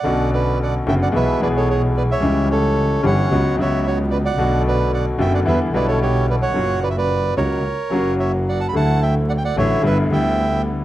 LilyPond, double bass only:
\new Staff \with { instrumentName = "Double bass" } { \clef bass \time 4/4 \key b \minor \tempo 4 = 111 b,,4. fis,,8 b,,8 b,,4. | cis,4. g,,8 cis,8 cis,4. | b,,4. fis,,8 e,8 b,,4. | fis,,4. cis,8 r8 fis,,4. |
d,4. a,,8 g,,8 d,4. | }